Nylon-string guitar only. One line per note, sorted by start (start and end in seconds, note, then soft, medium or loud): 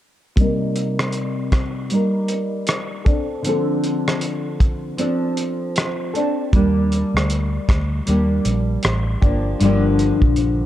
0.36 1.90 C3 medium
0.36 1.89 G3 medium
0.36 1.91 A#3 medium
0.40 1.92 D#4 medium
0.40 1.93 A#4 medium
1.90 3.06 G3 medium
1.90 3.07 A#3 medium
1.90 3.06 D#4 medium
1.90 3.04 A#4 medium
3.05 3.45 C4 soft
3.05 3.45 D4 soft
3.05 3.44 A4 medium
3.42 5.01 D3 medium
3.42 4.96 F3 medium
3.42 4.97 C4 medium
3.48 4.99 D4 medium
3.48 4.99 A4 medium
4.97 6.13 F3 medium
4.97 6.14 C4 medium
4.97 6.16 D4 medium
4.97 6.12 A4 medium
6.14 6.54 C4 soft
6.14 6.54 D4 soft
6.14 6.52 A4 medium
6.53 8.05 G3 medium
6.53 8.07 A#3 medium
6.53 8.08 D4 medium
6.57 8.09 G4 medium
8.06 9.25 G3 medium
8.06 9.24 A#3 medium
8.06 9.22 D4 medium
8.06 9.21 G4 medium
9.22 9.61 F3 soft
9.22 9.62 A#3 soft
9.22 9.61 D4 soft
9.22 9.60 G4 medium
9.60 10.66 G2 medium
9.60 10.66 D3 medium
9.60 10.66 F3 medium
9.60 10.66 A#3 medium
9.64 10.66 D4 medium
9.64 10.66 G4 medium